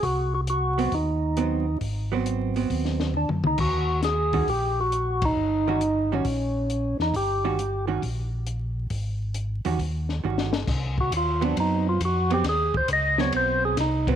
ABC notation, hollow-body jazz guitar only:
X:1
M:4/4
L:1/8
Q:"Swing" 1/4=136
K:Abmix
V:1 name="Hollow-body jazz guitar"
z3 [G,=B,C] z2 [G,B,C] z | z [G,=B,C]2 [G,B,C]3 z2 | z3 [E,=G,D^F] z4 | z [E,=G,D^F] z [E,G,DF] z4 |
z [E,=G,D^F] z [E,G,DF] z4 | z3 [E,=G,D_G] z2 [E,=G,D^F] z | z3 [G,=B,C]3 z [G,B,C] | z3 [G,=B,C]3 z [G,B,C] |]